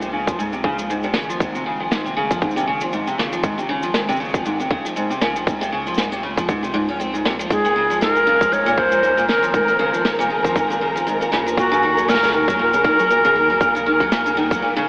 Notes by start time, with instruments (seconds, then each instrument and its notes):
Already playing: analog synth bass C#2
0.02 steel-string acoustic guitar C3, shaker
0.13 steel-string acoustic guitar C#3
0.27 steel-string acoustic guitar F3, kick, shaker
0.39 steel-string acoustic guitar G#2, shaker
0.53 steel-string acoustic guitar C3, shaker
0.64 steel-string acoustic guitar C#3, kick
0.79 steel-string acoustic guitar F3, shaker
0.90 steel-string acoustic guitar G#2, shaker
1.03 steel-string acoustic guitar C3, shaker
1.13 analog synth bass G#1, steel-string acoustic guitar C#3, snare
1.29 steel-string acoustic guitar F3, shaker
1.40 steel-string acoustic guitar G#2, kick, shaker
1.55 steel-string acoustic guitar C3, shaker
1.66 steel-string acoustic guitar C#3
1.80 steel-string acoustic guitar F3
1.91 steel-string acoustic guitar G#2, snare, shaker
2.05 steel-string acoustic guitar C3, shaker
2.17 steel-string acoustic guitar C#3
2.31 steel-string acoustic guitar F3, kick, shaker
2.42 steel-string acoustic guitar G#2, kick, shaker
2.51 shaker
2.56 steel-string acoustic guitar C3, shaker
2.59 shaker
2.67 steel-string acoustic guitar C#3
2.81 steel-string acoustic guitar F3, shaker
2.93 steel-string acoustic guitar G#2, shaker
3.07 steel-string acoustic guitar C3, shaker
3.18 analog synth bass G#1, steel-string acoustic guitar C#3, snare
3.32 steel-string acoustic guitar F3, shaker
3.43 steel-string acoustic guitar G#2, kick, shaker
3.58 steel-string acoustic guitar C3, shaker
3.69 steel-string acoustic guitar C#3
3.83 steel-string acoustic guitar F3, shaker
3.94 steel-string acoustic guitar G#2, snare, shaker
4.09 steel-string acoustic guitar C3, shaker
4.11 shaker
4.16 shaker
4.20 steel-string acoustic guitar C#3, shaker
4.25 shaker
4.29 shaker
4.34 steel-string acoustic guitar F3, kick, shaker
4.45 steel-string acoustic guitar G#2, shaker
4.60 steel-string acoustic guitar C3, shaker
4.71 steel-string acoustic guitar C#3, kick
4.85 steel-string acoustic guitar F3, shaker
4.96 steel-string acoustic guitar G#2, shaker
5.10 steel-string acoustic guitar C3, shaker
5.21 analog synth bass C#2, steel-string acoustic guitar C#3, snare
5.36 steel-string acoustic guitar F3, shaker
5.47 steel-string acoustic guitar G#2, kick, shaker
5.61 steel-string acoustic guitar C3, shaker
5.72 steel-string acoustic guitar C#3
5.87 steel-string acoustic guitar F3, shaker
5.94 steel-string acoustic guitar G#2, snare, shaker
5.98 shaker
6.12 steel-string acoustic guitar C3, shaker
6.23 steel-string acoustic guitar C#3
6.37 steel-string acoustic guitar F3, kick, shaker
6.48 analog synth bass C#2, steel-string acoustic guitar G#2, kick, shaker
6.63 steel-string acoustic guitar C3, shaker
6.74 steel-string acoustic guitar G#2
6.89 steel-string acoustic guitar C#4
7.00 steel-string acoustic guitar C4, shaker
7.14 steel-string acoustic guitar G#2, shaker
7.25 steel-string acoustic guitar C3, snare
7.39 steel-string acoustic guitar F3, shaker
7.50 analog synth bass C#2, steel-string acoustic guitar G#2, flute G#4, synth texture A#4 A#5, kick, shaker
7.65 steel-string acoustic guitar A#2, shaker
7.76 steel-string acoustic guitar C#3
7.90 steel-string acoustic guitar F3, shaker
8.01 steel-string acoustic guitar G#2, flute A#4, snare, shaker
8.15 steel-string acoustic guitar A#2, shaker
8.27 steel-string acoustic guitar C#3
8.41 steel-string acoustic guitar F3, kick, shaker
8.52 steel-string acoustic guitar G#2, flute C#5, shaker
8.66 steel-string acoustic guitar A#2, shaker
8.78 steel-string acoustic guitar C#3, flute C5, kick
8.92 steel-string acoustic guitar F3, shaker
9.03 steel-string acoustic guitar G#2, shaker
9.17 steel-string acoustic guitar A#2, shaker
9.28 analog synth bass G#1, steel-string acoustic guitar C#3, flute A#4, snare
9.42 steel-string acoustic guitar F3, shaker
9.54 steel-string acoustic guitar G#2, flute A#4, kick, shaker
9.68 steel-string acoustic guitar A#2, shaker
9.79 steel-string acoustic guitar C#3
9.93 steel-string acoustic guitar F3, shaker
10.05 steel-string acoustic guitar G#2, snare, shaker
10.19 steel-string acoustic guitar A#2, shaker
10.30 steel-string acoustic guitar C#3
10.44 steel-string acoustic guitar F3, kick, shaker
10.56 steel-string acoustic guitar G#2, kick, shaker
10.70 steel-string acoustic guitar A#2, shaker
10.81 steel-string acoustic guitar C#3
10.96 steel-string acoustic guitar F3, shaker
11.07 steel-string acoustic guitar G#2, shaker
11.21 steel-string acoustic guitar A#2, shaker
11.32 analog synth bass D#2, steel-string acoustic guitar C#3, snare
11.46 steel-string acoustic guitar F3, shaker
11.57 steel-string acoustic guitar A#2, flute F#4, kick, shaker
11.72 steel-string acoustic guitar C#3, shaker
11.83 steel-string acoustic guitar D#3
11.97 steel-string acoustic guitar F#3, shaker
12.08 steel-string acoustic guitar A#2, flute A#4, snare, shaker
12.14 snare
12.18 snare
12.23 steel-string acoustic guitar C#3, snare, shaker
12.26 snare
12.31 steel-string acoustic guitar D#3, flute A#4, snare
12.48 steel-string acoustic guitar F#3, kick, shaker
12.59 steel-string acoustic guitar A#2
12.73 steel-string acoustic guitar C#3, shaker
12.84 steel-string acoustic guitar D#3, kick
12.99 steel-string acoustic guitar F#3, shaker
13.10 steel-string acoustic guitar A#2, shaker
13.25 steel-string acoustic guitar C#3, shaker
13.36 analog synth bass D#2, steel-string acoustic guitar D#3
13.50 steel-string acoustic guitar F#3
13.61 steel-string acoustic guitar A#2, kick, shaker
13.75 steel-string acoustic guitar C#3, shaker
13.86 steel-string acoustic guitar D#3
14.00 steel-string acoustic guitar F#3, kick
14.12 steel-string acoustic guitar A#2, snare, shaker
14.26 steel-string acoustic guitar C#3, shaker
14.37 steel-string acoustic guitar D#3
14.51 steel-string acoustic guitar F#3, kick, shaker
14.62 steel-string acoustic guitar A#2
14.76 steel-string acoustic guitar C#3